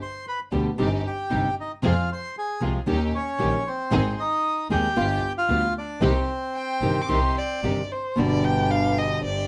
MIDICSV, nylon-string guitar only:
0, 0, Header, 1, 2, 480
1, 0, Start_track
1, 0, Key_signature, -3, "minor"
1, 0, Tempo, 523104
1, 1687, Time_signature, 4, 2, 24, 8
1, 5520, Tempo, 536193
1, 8617, End_track
2, 0, Start_track
2, 0, Title_t, "Nylon-string guitar"
2, 0, Program_c, 0, 24
2, 475, Note_on_c, 0, 47, 51
2, 475, Note_on_c, 0, 50, 57
2, 478, Note_on_c, 0, 55, 53
2, 479, Note_on_c, 0, 67, 63
2, 480, Note_on_c, 0, 59, 61
2, 634, Note_off_c, 0, 47, 0
2, 634, Note_off_c, 0, 50, 0
2, 636, Note_off_c, 0, 55, 0
2, 636, Note_off_c, 0, 67, 0
2, 637, Note_off_c, 0, 59, 0
2, 716, Note_on_c, 0, 55, 73
2, 717, Note_on_c, 0, 48, 64
2, 719, Note_on_c, 0, 60, 72
2, 722, Note_on_c, 0, 63, 70
2, 725, Note_on_c, 0, 67, 77
2, 802, Note_off_c, 0, 55, 0
2, 803, Note_off_c, 0, 48, 0
2, 804, Note_off_c, 0, 60, 0
2, 805, Note_off_c, 0, 63, 0
2, 807, Note_off_c, 0, 67, 0
2, 1193, Note_on_c, 0, 48, 52
2, 1197, Note_on_c, 0, 63, 60
2, 1198, Note_on_c, 0, 55, 59
2, 1200, Note_on_c, 0, 60, 54
2, 1203, Note_on_c, 0, 67, 58
2, 1354, Note_off_c, 0, 48, 0
2, 1356, Note_off_c, 0, 55, 0
2, 1356, Note_off_c, 0, 63, 0
2, 1357, Note_off_c, 0, 60, 0
2, 1359, Note_off_c, 0, 67, 0
2, 1672, Note_on_c, 0, 48, 74
2, 1680, Note_on_c, 0, 53, 68
2, 1681, Note_on_c, 0, 56, 71
2, 1683, Note_on_c, 0, 60, 73
2, 1687, Note_on_c, 0, 65, 83
2, 1761, Note_off_c, 0, 48, 0
2, 1764, Note_off_c, 0, 53, 0
2, 1765, Note_off_c, 0, 56, 0
2, 1766, Note_off_c, 0, 60, 0
2, 1768, Note_off_c, 0, 65, 0
2, 2390, Note_on_c, 0, 48, 62
2, 2392, Note_on_c, 0, 53, 59
2, 2399, Note_on_c, 0, 60, 60
2, 2400, Note_on_c, 0, 56, 57
2, 2402, Note_on_c, 0, 65, 56
2, 2552, Note_off_c, 0, 48, 0
2, 2553, Note_off_c, 0, 53, 0
2, 2556, Note_off_c, 0, 56, 0
2, 2556, Note_off_c, 0, 60, 0
2, 2558, Note_off_c, 0, 65, 0
2, 2626, Note_on_c, 0, 51, 70
2, 2631, Note_on_c, 0, 55, 82
2, 2633, Note_on_c, 0, 61, 79
2, 2637, Note_on_c, 0, 67, 85
2, 2716, Note_off_c, 0, 51, 0
2, 2719, Note_off_c, 0, 55, 0
2, 2720, Note_off_c, 0, 61, 0
2, 2722, Note_off_c, 0, 67, 0
2, 3107, Note_on_c, 0, 51, 60
2, 3115, Note_on_c, 0, 55, 66
2, 3116, Note_on_c, 0, 61, 57
2, 3117, Note_on_c, 0, 67, 67
2, 3269, Note_off_c, 0, 51, 0
2, 3273, Note_off_c, 0, 55, 0
2, 3274, Note_off_c, 0, 61, 0
2, 3274, Note_off_c, 0, 67, 0
2, 3584, Note_on_c, 0, 51, 70
2, 3586, Note_on_c, 0, 56, 73
2, 3592, Note_on_c, 0, 60, 81
2, 3594, Note_on_c, 0, 63, 81
2, 3594, Note_on_c, 0, 68, 87
2, 3674, Note_off_c, 0, 51, 0
2, 3675, Note_off_c, 0, 56, 0
2, 3678, Note_off_c, 0, 60, 0
2, 3679, Note_off_c, 0, 63, 0
2, 3679, Note_off_c, 0, 68, 0
2, 4316, Note_on_c, 0, 51, 61
2, 4316, Note_on_c, 0, 56, 62
2, 4317, Note_on_c, 0, 60, 54
2, 4321, Note_on_c, 0, 63, 61
2, 4325, Note_on_c, 0, 68, 68
2, 4470, Note_off_c, 0, 51, 0
2, 4470, Note_off_c, 0, 56, 0
2, 4471, Note_off_c, 0, 60, 0
2, 4473, Note_off_c, 0, 63, 0
2, 4475, Note_off_c, 0, 68, 0
2, 4551, Note_on_c, 0, 55, 74
2, 4554, Note_on_c, 0, 59, 76
2, 4558, Note_on_c, 0, 65, 85
2, 4635, Note_off_c, 0, 55, 0
2, 4637, Note_off_c, 0, 59, 0
2, 4639, Note_off_c, 0, 65, 0
2, 5033, Note_on_c, 0, 55, 58
2, 5038, Note_on_c, 0, 59, 63
2, 5041, Note_on_c, 0, 65, 63
2, 5189, Note_off_c, 0, 55, 0
2, 5192, Note_off_c, 0, 59, 0
2, 5193, Note_off_c, 0, 65, 0
2, 5516, Note_on_c, 0, 48, 75
2, 5520, Note_on_c, 0, 51, 73
2, 5520, Note_on_c, 0, 60, 78
2, 5524, Note_on_c, 0, 67, 81
2, 5525, Note_on_c, 0, 55, 80
2, 5597, Note_off_c, 0, 48, 0
2, 5599, Note_off_c, 0, 51, 0
2, 5599, Note_off_c, 0, 60, 0
2, 5601, Note_off_c, 0, 67, 0
2, 5602, Note_off_c, 0, 55, 0
2, 6237, Note_on_c, 0, 48, 56
2, 6240, Note_on_c, 0, 51, 58
2, 6243, Note_on_c, 0, 60, 56
2, 6244, Note_on_c, 0, 55, 52
2, 6246, Note_on_c, 0, 67, 59
2, 6390, Note_off_c, 0, 48, 0
2, 6391, Note_off_c, 0, 51, 0
2, 6393, Note_off_c, 0, 60, 0
2, 6394, Note_off_c, 0, 55, 0
2, 6394, Note_off_c, 0, 67, 0
2, 6478, Note_on_c, 0, 51, 68
2, 6480, Note_on_c, 0, 48, 67
2, 6485, Note_on_c, 0, 67, 81
2, 6488, Note_on_c, 0, 55, 68
2, 6490, Note_on_c, 0, 60, 74
2, 6559, Note_off_c, 0, 51, 0
2, 6560, Note_off_c, 0, 48, 0
2, 6562, Note_off_c, 0, 67, 0
2, 6564, Note_off_c, 0, 55, 0
2, 6565, Note_off_c, 0, 60, 0
2, 6961, Note_on_c, 0, 48, 54
2, 6966, Note_on_c, 0, 51, 59
2, 6969, Note_on_c, 0, 55, 54
2, 6970, Note_on_c, 0, 60, 57
2, 6975, Note_on_c, 0, 67, 57
2, 7119, Note_off_c, 0, 48, 0
2, 7122, Note_off_c, 0, 51, 0
2, 7123, Note_off_c, 0, 55, 0
2, 7124, Note_off_c, 0, 60, 0
2, 7126, Note_off_c, 0, 67, 0
2, 7437, Note_on_c, 0, 47, 74
2, 7449, Note_on_c, 0, 50, 82
2, 7457, Note_on_c, 0, 55, 81
2, 7460, Note_on_c, 0, 59, 78
2, 7471, Note_on_c, 0, 67, 76
2, 8386, Note_off_c, 0, 47, 0
2, 8392, Note_off_c, 0, 50, 0
2, 8396, Note_off_c, 0, 55, 0
2, 8397, Note_off_c, 0, 59, 0
2, 8403, Note_off_c, 0, 67, 0
2, 8617, End_track
0, 0, End_of_file